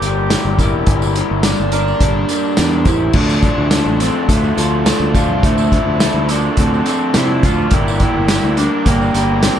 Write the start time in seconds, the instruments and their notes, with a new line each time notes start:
Already playing: analog synth lead G4, transistor combo organ A#4 D5 G5 D6, tine electric piano D5
0.02 fingered electric bass G1, clean electric guitar G2 D3 G3 A#3 D4, closed hi-hat, tambourine
0.06 clean electric guitar G4
0.30 clean electric guitar G2 D3 G3 A#3 D4 G4, snare, closed hi-hat, tambourine
0.45 fingered electric bass G1
0.59 clean electric guitar G2 D3 G3 A#3 D4, analog synth lead E4, tine electric piano A#4, kick, closed hi-hat, tambourine
0.63 clean electric guitar G4
0.73 fingered electric bass E1
0.87 fingered electric bass G1, clean electric guitar G2 D3 G3 A#3 D4, transistor combo organ C6, kick, closed hi-hat
0.91 clean electric guitar G4
1.02 tambourine
1.16 clean electric guitar G2 D3 G3 A#3 D4 G4, closed hi-hat
1.31 fingered electric bass G1
1.43 analog synth lead D4, snare, closed hi-hat, tambourine
1.45 clean electric guitar G2 D3 G3 A#3 D4 G4, tine electric piano A#4, tambourine
1.60 fingered electric bass G1
1.72 clean electric guitar G2 D3 G3 A#3 D4 G4, analog synth lead D4, tine electric piano A#4, closed hi-hat, tambourine
1.88 tambourine
2.00 fingered electric bass G1, clean electric guitar G2 D3 G3 A#3 D4 G4, kick, closed hi-hat, tambourine
2.29 clean electric guitar G2 D3 G3 A#3 D4 G4, closed hi-hat, tambourine
2.45 tambourine
2.57 fingered electric bass E2, clean electric guitar G2 D3 G3 A#3 D4 G4, snare, closed hi-hat, tambourine
2.73 tambourine
2.85 fingered electric bass A1, clean electric guitar G2 D3 G3 A#3 D4 G4, analog synth lead E4, tine electric piano C5, kick, closed hi-hat, tambourine
3.13 fingered electric bass D2, clean electric guitar D3 F3 C4 D4 A4, overdriven electric guitar A3, analog synth lead D4, transistor combo organ A4 A5 C6, tine electric piano A4, kick, tambourine, crash
3.29 tambourine
3.42 clean electric guitar D3 F3 C4 D4 A4, overdriven electric guitar A3, kick, closed hi-hat
3.58 fingered electric bass D2
3.70 clean electric guitar D3 F3 C4 D4 A4, snare, closed hi-hat, tambourine
3.72 overdriven electric guitar A3, tambourine
3.86 fingered electric bass A1
3.98 clean electric guitar D3 F3 C4 D4 A4, overdriven electric guitar A3, analog synth lead C4, tine electric piano A4, closed hi-hat, tambourine
4.27 fingered electric bass D2, clean electric guitar D3 F3 C4 D4 A4, overdriven electric guitar A3, analog synth lead A3, kick, closed hi-hat
4.31 tine electric piano F4
4.44 tambourine
4.56 fingered electric bass D2, clean electric guitar D3 F3 C4 D4 A4, analog synth lead A3, overdriven electric guitar A3, closed hi-hat, tambourine
4.61 tine electric piano F4
4.84 clean electric guitar D3 F3 C4 D4 A4, overdriven electric guitar A3, snare, closed hi-hat, tambourine
5.00 fingered electric bass D2
5.15 clean electric guitar D3 F3 C4 D4 A4, overdriven electric guitar A3, analog synth lead F4, tine electric piano D5, kick, closed hi-hat, tambourine
5.28 fingered electric bass C2
5.43 fingered electric bass D2, clean electric guitar D3 F3 C4 D4 A4, overdriven electric guitar A3, analog synth lead E4, tine electric piano C5, transistor combo organ D6, kick, closed hi-hat, tambourine
5.58 tambourine
5.71 clean electric guitar D3 F3 C4 D4 A4, overdriven electric guitar A3, kick, closed hi-hat
5.86 fingered electric bass D2
6.00 clean electric guitar D3 F3 C4 D4 A4, overdriven electric guitar A3, snare, closed hi-hat, tambourine
6.14 fingered electric bass D2
6.29 clean electric guitar D3 F3 C4 D4 A4, overdriven electric guitar A3, analog synth lead D4, closed hi-hat, tambourine
6.33 tine electric piano A#4
6.57 fingered electric bass D2, clean electric guitar D3 F3 C4 D4 A4, overdriven electric guitar A3, analog synth lead C4, tine electric piano A4, kick, closed hi-hat
6.74 tambourine
6.86 clean electric guitar D3 F3 C4 D4 A4, overdriven electric guitar A3, analog synth lead C4, tine electric piano A4, closed hi-hat, tambourine
7.14 fingered electric bass C3, clean electric guitar D3 F3 C4 D4 A4, overdriven electric guitar A3, snare, closed hi-hat, tambourine
7.17 analog synth lead E4, tine electric piano C5, tambourine
7.43 fingered electric bass D2, clean electric guitar D3 F3 C4 D4 A4, overdriven electric guitar A3, analog synth lead F4, tine electric piano D5, kick, closed hi-hat, tambourine
7.69 fingered electric bass G1, clean electric guitar G2 D3, transistor combo organ A#3 D5 G5, overdriven electric guitar G4, kick, closed hi-hat
7.73 clean electric guitar G3 A#3 D4 A#4, analog synth lead E4, tine electric piano A#4, tambourine
7.88 tambourine
8.00 clean electric guitar G2 D3 G3 A#3 D4 A#4, overdriven electric guitar G4, kick, closed hi-hat
8.16 fingered electric bass G1
8.28 clean electric guitar G2 D3 G3 D4, snare, closed hi-hat, tambourine
8.30 clean electric guitar A#3 A#4, overdriven electric guitar G4, tambourine
8.44 fingered electric bass D2
8.57 clean electric guitar G2 D3 G3 A#3 D4 A#4, analog synth lead D4, overdriven electric guitar G4, tine electric piano A#4, closed hi-hat, tambourine
8.86 fingered electric bass G1, clean electric guitar G2 D3 G3 A#3 D4 A#4, analog synth lead A#3, overdriven electric guitar G4, tine electric piano G4, kick, closed hi-hat
9.01 tambourine
9.14 fingered electric bass G1, clean electric guitar G2 D3 G3 A#3 D4 A#4, analog synth lead A#3, overdriven electric guitar G4, tine electric piano G4, closed hi-hat, tambourine
9.43 clean electric guitar G2 D3 G3 A#3 D4 A#4, analog synth lead C4, overdriven electric guitar G4, tine electric piano G4, snare, closed hi-hat, tambourine